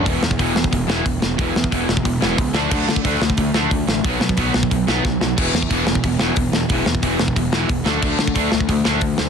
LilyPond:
<<
  \new Staff \with { instrumentName = "Distorted electric guitar" } { \clef bass \time 4/4 \key d \lydian \tempo 4 = 181 <e, b, e>8 <e, b,>8 <e, b, e>8 <e, b,>8 <e, b,>8 <e, b, e>8 <e, b,>8 <e, b,>8 | <e, b, e>8 <e, b,>8 <e, b, e>8 <e, b,>8 <e, b,>8 <e, b, e>8 <e, b,>8 <d a d'>8 | <d a d'>8 <d a>8 <d a d'>8 <d a>8 <d a>8 <d a d'>8 <d a>8 <d a>8 | <b, fis b>8 <b, fis>8 <b, fis b>8 <b, fis>8 <b, fis>8 <b, fis b>8 <b, fis>8 <b, fis>8 |
<e, b, e>8 <e, b,>8 <e, b, e>8 <e, b,>8 <e, b,>8 <e, b, e>8 <e, b,>8 <e, b,>8 | <e, b, e>8 <e, b,>8 <e, b, e>8 <e, b,>8 <e, b,>8 <e, b, e>8 <e, b,>8 <d a d'>8 | <d a d'>8 <d a>8 <d a d'>8 <d a>8 <d a>8 <d a d'>8 <d a>8 <d a>8 | }
  \new Staff \with { instrumentName = "Overdriven electric guitar" } { \clef bass \time 4/4 \key d \lydian <e, b, e>8 <e, b,>8 <e, b, e>8 <e, b,>8 <e, b,>8 <e, b, e>8 <e, b,>8 <e, b,>8 | <e, b, e>8 <e, b,>8 <e, b, e>8 <e, b,>8 <e, b,>8 <e, b, e>8 <e, b,>8 <d a d'>8 | <d a d'>8 <d a>8 <d a d'>8 <d a>8 <d a>8 <d a d'>8 <d a>8 <d a>8 | <b, fis b>8 <b, fis>8 <b, fis b>8 <b, fis>8 <b, fis>8 <b, fis b>8 <b, fis>8 <b, fis>8 |
<e, b, e>8 <e, b,>8 <e, b, e>8 <e, b,>8 <e, b,>8 <e, b, e>8 <e, b,>8 <e, b,>8 | <e, b, e>8 <e, b,>8 <e, b, e>8 <e, b,>8 <e, b,>8 <e, b, e>8 <e, b,>8 <d a d'>8 | <d a d'>8 <d a>8 <d a d'>8 <d a>8 <d a>8 <d a d'>8 <d a>8 <d a>8 | }
  \new Staff \with { instrumentName = "Picked electric bass" } { \clef bass \time 4/4 \key d \lydian e,,8 e,8 e,,8 e,,8 e,,8 e,,8 e,,8 e,,8 | e,,8 e,8 e,,8 e,,8 e,,8 e,,8 cis,8 d,8 | d,8 d8 d,8 d,8 d,8 d,8 d,8 a,,8 | b,,8 b,8 b,,8 b,,8 b,,8 b,,8 b,,8 b,,8 |
e,,8 e,8 e,,8 e,,8 e,,8 e,,8 e,,8 e,,8 | e,,8 e,8 e,,8 e,,8 e,,8 e,,8 e,,8 d,8 | d,8 d8 d,8 d,8 d,8 d,8 d,8 d,8 | }
  \new DrumStaff \with { instrumentName = "Drums" } \drummode { \time 4/4 <hho bd>8 sn16 bd16 <hho bd>8 sn16 bd16 <hho bd>8 sn8 <hho bd>8 sn8 | <hho bd>8 sn16 bd16 <hho bd>8 sn16 bd16 <hho bd>8 sn8 <hho bd>8 sn8 | <cymc bd>8 sn16 bd16 <hho bd>8 sn16 bd16 <hho bd>8 sn8 <hho bd>8 sn8 | <hho bd>8 sn16 bd16 <hho bd>8 sn16 bd16 <hho bd>8 sn8 <bd sn>8 sn8 |
<cymc bd>8 sn16 bd16 <hho bd>8 sn16 bd16 <hho bd>8 sn8 <hho bd>8 sn8 | <hho bd>8 sn16 bd16 <hho bd>8 sn16 bd16 <hho bd>8 sn8 <hho bd>8 sn8 | <cymc bd>8 sn16 bd16 <hho bd>8 sn16 bd16 <hho bd>8 sn8 <hho bd>8 sn8 | }
>>